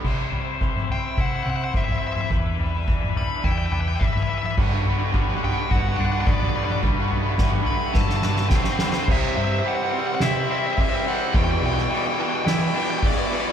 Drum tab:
CC |x---------------|----------------|x---------------|----------------|
RD |----------------|----------------|----------------|----------------|
SD |----------------|----------------|----------------|----o---oooooooo|
T2 |-----o------oo-o|-----o------oo-o|-----o------oo-o|-----o----------|
FT |o-o---o-o-o--o--|o-o---o-o-o--o--|o-o---o-o-o--o--|o-o---o---------|
BD |o---o---o---o---|o---o---o---o---|o---o---o---o---|o---o---o---o---|

CC |x---------------|----------------|
RD |--x-x-x-x-x-x-x-|x-x-x-x-x-x-x-x-|
SD |--------o-------|---o----o-------|
T2 |----------------|----------------|
FT |----------------|----------------|
BD |o-----------o---|o-----------o---|